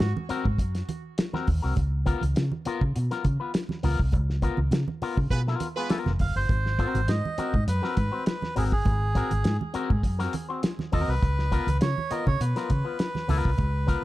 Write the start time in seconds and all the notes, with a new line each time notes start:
Already playing: F#4
0.00 G#2, snare
0.17 high conga
0.29 C4 F#4 A#4, muted fingered electric bass stroke, closed hi-hat
0.45 G#2, kick, low conga
0.58 F#2, kick, closed hi-hat, muted conga
0.75 snare, closed hi-hat
0.89 closed hi-hat, muted conga, high conga
1.18 snare, closed hi-hat
1.33 C4 F#4 A#4, snare, high conga
1.47 D#2, kick, open hi-hat, muted conga, high conga, low conga
1.62 C2 C4 F#4 A#4
1.76 C#2, kick, closed hi-hat, muted conga, low conga
2.06 B3 F4 A#4, kick, closed hi-hat, muted conga
2.21 C#2, closed hi-hat, high conga
2.35 C#3, snare, closed hi-hat, muted conga
2.52 high conga
2.65 B3 F4 A#4, muted fingered electric bass stroke, closed hi-hat, muted conga
2.81 C#3, kick, low conga
2.96 B2, closed hi-hat
3.11 B3 F4 A#4, snare, closed hi-hat
3.24 C#3, kick, closed hi-hat, high conga
3.40 B3 F4 B4
3.54 snare, closed hi-hat
3.69 snare, high conga
3.83 C#2 B3 F4 A#4, open hi-hat, muted conga, high conga, low conga
4.00 C2, kick
4.12 C#2, kick, closed hi-hat, muted conga, low conga
4.30 snare
4.42 B3 F4 A#4, kick, closed hi-hat, muted conga
4.57 C#2, high conga
4.71 C#3, snare, closed hi-hat, muted conga
4.88 high conga
5.02 B3 F4 A#4, muted fingered electric bass stroke, open hi-hat, muted conga
5.17 C#3, kick, low conga
5.30 B2 G#3 B3 F4 B4, kick, closed hi-hat
5.47 B3 F4 A#4, snare
5.60 closed hi-hat, high conga
5.76 G#3 B3 F4 B4
5.89 B3 F4 A#4, snare, closed hi-hat, muted conga
6.06 F1, snare, high conga
6.19 F#1 F5, kick, open hi-hat, high conga, low conga
6.36 G1 C5
6.49 G#1, kick, closed hi-hat, muted conga, low conga
6.66 snare
6.79 C4 F#4 A#4, kick, closed hi-hat, muted conga
6.95 G#1, closed hi-hat, high conga
7.08 G#2 D#5, snare, closed hi-hat
7.25 high conga
7.38 C4 F#4 A#4, muted fingered electric bass stroke, closed hi-hat, muted conga
7.54 G#2, kick, low conga
7.67 F#2 B4, closed hi-hat, muted conga
7.82 C4 F#4 A#4, snare
7.97 G#2 B4, kick, closed hi-hat, muted conga, high conga
8.12 C4 F#4 C5
8.26 B4, snare, closed hi-hat
8.42 snare, high conga
8.56 G#1 C4 F#4 G#4 A#4, open hi-hat, muted conga, high conga, low conga
8.72 G1 G#4, kick
8.85 G#1, kick, closed hi-hat, muted conga, low conga
9.15 C4 F#4 A#4, kick, closed hi-hat, muted conga
9.31 G#1, closed hi-hat, high conga
9.44 G#2, snare, closed hi-hat, muted conga
9.61 high conga
9.74 C4 F#4 A#4, muted fingered electric bass stroke, closed hi-hat
9.90 G#2, kick, low conga
10.03 F#2, kick, closed hi-hat, muted conga
10.19 C4 F#4 A#4, snare, closed hi-hat
10.33 closed hi-hat, muted conga, high conga
10.49 C4 F#4 C5
10.63 snare, closed hi-hat, muted conga
10.79 snare, high conga
10.92 D#2 C4 F#4 A#4 D#5, kick, open hi-hat, muted conga, high conga, low conga
11.08 C2 B4
11.22 C#2, kick, closed hi-hat, low conga
11.39 snare
11.51 B3 F4 A#4, kick, closed hi-hat, muted conga
11.67 C#2, closed hi-hat, high conga
11.81 C#3 C#5, snare, closed hi-hat, muted conga
11.98 high conga
12.10 B3 F4 A#4 D#5, muted fingered electric bass stroke, closed hi-hat
12.27 C#3 C#5, kick, low conga
12.40 B2 B4, closed hi-hat, muted conga
12.56 B3 F4 A#4, snare, closed hi-hat
12.70 C#3, kick, closed hi-hat, high conga
12.85 B3 F4 B4
12.99 snare, closed hi-hat
13.15 snare, high conga
13.28 C#2 B3 F4 A#4, open hi-hat, muted conga, high conga, low conga
13.45 C2, kick
13.58 C#2, kick, closed hi-hat, low conga
13.87 B3 F4 A#4, kick, closed hi-hat, muted conga